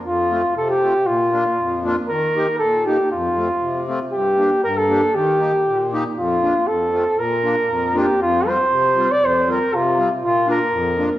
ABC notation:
X:1
M:2/4
L:1/16
Q:1/4=118
K:Bb
V:1 name="Flugelhorn"
F4 A G3 | F6 z2 | B4 A2 G2 | F6 z2 |
G4 B A3 | G6 z2 | F4 A4 | B6 G2 |
[K:Bblyd] F2 c4- c d | c2 B2 F3 z | F2 B6 |]
V:2 name="Accordion"
z2 [A,CF]2 z2 [A,CF]2 | z2 [B,DF]2 z2 [B,DF]2 | z2 [B,EG]2 z2 [B,EG]2 | z2 [A,CF]2 z2 [A,CF]2 |
z2 [B,DG]2 z2 [B,DG]2 | z2 [B,EG]2 z2 [B,EG]2 | z2 [B,DF]2 z2 [A,CF]2 | z2 [B,DF]2 z2 [B,DF]2 |
[K:Bblyd] z2 [G,CF]2 z2 [G,CF]2 | z2 [G,CF]2 z2 [G,CF]2 | z2 [B,DF]2 z2 [B,DF]2 |]
V:3 name="Accordion" clef=bass
F,,4 C,4 | B,,4 F,,4 | E,4 B,,4 | F,,4 C,4 |
G,,4 G,,4 | E,4 B,,4 | F,,4 F,,4 | B,,4 F,,4 |
[K:Bblyd] F,,4 C,4 | F,,4 C,4 | B,,4 F,,4 |]